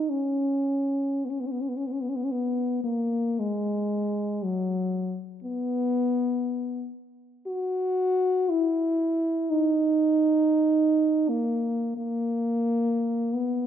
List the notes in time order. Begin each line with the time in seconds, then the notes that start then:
Already playing: D#4
0.09 C#4
1.25 B3
1.29 C#4
1.40 B3
1.46 C#4
1.51 B3
1.61 C#4
1.68 B3
1.77 C#4
1.87 B3
1.93 C#4
2.02 B3
2.09 C#4
2.16 B3
2.24 C#4
2.32 B3
2.83 A#3
3.40 G#3
4.44 F#3
5.44 B3
7.47 F#4
8.49 E4
9.50 D#4
11.29 A#3
11.97 A#3
13.34 B3